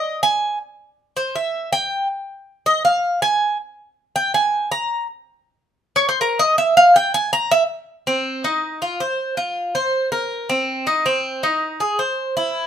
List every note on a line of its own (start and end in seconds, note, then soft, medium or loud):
0.00 0.20 D#5 medium
0.23 0.58 G#5 medium
1.17 1.35 C5 medium
1.36 1.70 E5 medium
1.73 2.07 G5 loud
2.66 2.84 D#5 medium
2.85 3.20 F5 medium
3.22 3.57 G#5 loud
4.16 4.34 G5 medium
4.34 4.69 G#5 medium
4.72 5.06 A#5 medium
5.96 6.08 C#5 medium
6.09 6.21 C5 medium
6.21 6.39 A#4 medium
6.39 6.58 D#5 loud
6.58 6.76 E5 medium
6.77 6.95 F5 loud
6.96 7.14 G5 medium
7.14 7.32 G#5 loud
7.33 7.51 A#5 loud
7.51 7.63 E5 medium
8.07 8.43 C4 medium
8.44 8.81 D#4 medium
8.82 9.00 F4 medium
9.00 9.37 C5 medium
9.37 9.74 F4 medium
9.75 10.11 C5 medium
10.12 10.48 A#4 medium
10.49 10.86 C4 medium
10.87 11.05 D#4 medium
11.06 11.42 C4 medium
11.43 11.79 D#4 medium
11.80 11.98 G#4 medium
11.99 12.35 C5 medium
12.37 12.67 E4 medium